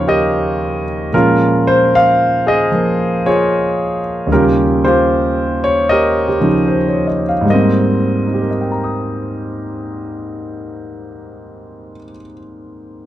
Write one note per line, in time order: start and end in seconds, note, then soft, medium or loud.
0.00 1.14 D#2 medium
0.00 1.13 C#3 soft
0.00 1.12 F3 soft
0.00 1.14 G3 soft
0.00 1.15 D#4 soft
0.00 0.83 F4 medium
0.00 0.08 G4 medium
0.00 1.15 C5 medium
0.00 1.16 C#5 loud
0.00 1.15 F5 medium
0.07 1.09 G4 medium
0.07 1.09 A#4 medium
0.07 0.83 D#5 medium
1.13 4.29 A#2 soft
1.13 2.70 F3 soft
1.13 4.30 G#3 soft
1.13 4.30 C#4 medium
1.13 2.68 F4 medium
1.13 1.68 A#4 medium
1.67 1.94 C5 medium
1.95 2.48 F5 loud
2.47 3.25 G#4 medium
2.47 3.28 D#5 medium
2.72 4.30 F3 soft
2.72 4.31 A#3 soft
3.26 4.27 F4 medium
3.26 4.27 G#4 medium
3.26 4.00 C#5 medium
4.27 7.44 D#2 medium
4.27 6.38 C#3 soft
4.27 7.44 G3 soft
4.32 5.85 C#4 medium
4.32 4.84 F4 medium
4.32 4.84 G4 medium
4.32 4.44 A#4 medium
4.84 6.38 F4 medium
4.84 5.90 G4 medium
4.84 5.65 C5 medium
5.64 5.90 C#5 medium
5.89 6.27 G4 medium
5.89 6.47 A#4 medium
5.89 7.06 D#5 medium
6.28 6.52 G4 soft
6.40 7.45 C#3 soft
6.40 7.46 F3 soft
6.40 7.47 D#4 medium
6.49 6.75 A#4 soft
6.68 7.04 C5 medium
6.88 7.21 C#5 medium
7.07 7.31 D#5 medium
7.29 7.55 F5 medium
7.41 11.90 G#2 medium
7.45 11.94 G3 medium
7.50 11.99 A#3 medium
7.50 8.49 D#5 medium
7.54 12.03 C4 medium
8.27 12.09 D#4 soft
8.34 12.12 G4 soft
8.42 12.16 A#4 soft
8.51 12.21 D#5 soft
8.61 12.26 G5 soft
8.72 12.31 A#5 soft
8.84 12.37 D#6 soft